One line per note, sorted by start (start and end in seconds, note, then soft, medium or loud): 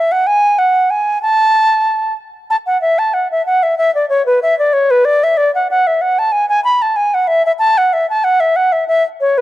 0.00 0.13 E5 medium
0.12 0.28 F#5 medium
0.27 0.60 G#5 loud
0.59 0.92 F#5 medium
0.90 1.21 G#5 medium
1.22 2.14 A5 loud
2.50 2.56 A5 medium
2.66 2.80 F#5 medium
2.82 3.00 E5 medium
2.99 3.15 A5 medium
3.14 3.31 F#5 medium
3.31 3.45 E5 medium
3.46 3.64 F#5 medium
3.63 3.77 E5 medium
3.78 3.93 E5 medium
3.95 4.08 D5 medium
4.09 4.25 C#5 medium
4.26 4.40 B4 medium
4.42 4.57 E5 medium
4.59 4.75 D5 medium
4.73 4.92 C#5 medium
4.91 5.06 B4 medium
5.05 5.25 D5 loud
5.24 5.39 E5 medium
5.37 5.54 D5 loud
5.55 5.68 F#5 medium
5.70 5.89 F#5 medium
5.87 6.03 E5 medium
6.01 6.20 F#5 medium
6.19 6.34 A5 medium
6.32 6.49 G#5 loud
6.49 6.63 G#5 loud
6.64 6.83 B5 loud
6.82 6.98 A5 medium
6.96 7.16 G#5 medium
7.14 7.29 F#5 medium
7.28 7.45 E5 medium
7.46 7.52 E5 medium
7.59 7.79 A5 loud
7.78 7.95 F#5 medium
7.93 8.09 E5 medium
8.10 8.26 A5 medium
8.24 8.42 F#5 medium
8.40 8.58 E5 medium
8.56 8.74 F#5 medium
8.72 8.87 E5 medium
8.88 9.03 E5 loud
9.21 9.39 C#5 medium
9.38 9.41 B4 medium